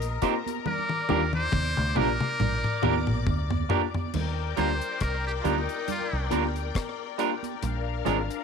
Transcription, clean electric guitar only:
0.22 A#3 D#4 G4 C5
1.09 A#3 D4 G4 A#4
1.95 A#3 D4 G4 A#4
2.83 A#3 D4 G4 A#4
3.69 A#3 D4 G4 A#4
4.57 G3 D4 F4 A#4
5.44 G3 D4 F4 A#4
6.31 G3 D4 F4 A#4
7.18 G3 D4 F4 A#4
8.05 G#3 D4 F4 A#4

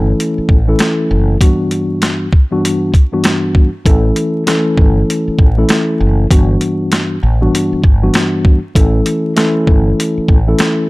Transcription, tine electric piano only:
Already playing: E3 A3 C#4 E4 A4
0.68 E3 A3 C#4 E4 A4
1.41 G2 E3 G3 B3 D4 F#4
2.51 G2 E3 G3 B3 D4 F#4
3.13 G2 E3 G3 B3 D4 F#4
3.85 E3 A3 C#4 E4 A4
4.46 E3 A3 C#4 E4 A4
5.58 E3 A3 C#4 E4 A4
6.30 G2 E3 G3 B3 D4 F#4
7.41 G2 E3 G3 B3 D4 F#4
8.02 G2 E3 G3 B3 D4 F#4
8.75 E3 A3 C#4 E4 A4
9.36 E3 A3 C#4 E4 A4
10.47 E3 A3 C#4 E4 A4

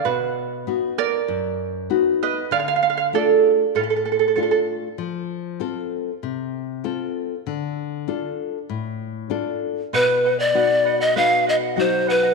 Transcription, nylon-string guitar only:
0.05 B2
0.67 B3 D#4 F#4
1.28 F#2
1.90 B3 D#4 F#4
2.51 D3
3.13 A3 D4 F4
3.75 A2
4.36 A3 D4 F4
4.98 F3
5.60 C4 F4 A4
6.23 C3
6.84 C4 F4 A4
7.47 D3
8.08 D4 F4 A4
8.69 A2
9.30 D4 F4 A4
9.93 B2
10.54 B3 D#4 F#4
11.16 B3 D#4 F#4
11.77 F#3 D#4 F#4

